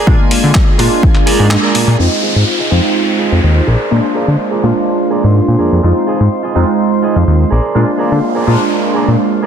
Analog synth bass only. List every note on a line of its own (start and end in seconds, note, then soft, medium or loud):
0.07 0.16 A#2 loud
0.44 0.52 D3 medium
0.79 0.88 A#2 medium
1.40 1.56 G#2 loud
1.75 1.85 A#2 soft
1.88 1.96 A#2 medium
1.99 2.08 F2 loud
2.36 2.44 G#2 medium
2.71 2.80 F2 medium
3.32 3.40 F2 medium
3.44 3.61 D#2 loud
3.67 3.76 A#1 medium
3.92 4.00 A#2 loud
4.28 4.36 D3 medium
4.63 4.72 A#2 medium
5.24 5.41 G#2 loud
5.48 5.56 A#2 loud
5.60 5.69 F2 soft
5.72 5.80 F2 medium
5.84 5.92 F2 loud
6.20 6.28 G#2 medium
6.56 6.64 F2 medium
7.16 7.24 F2 medium
7.27 7.45 D#2 loud
7.52 7.60 A#1 medium
7.75 7.84 A#2 loud
8.12 8.20 D3 medium
8.47 8.56 A#2 medium
9.08 9.16 A#2 medium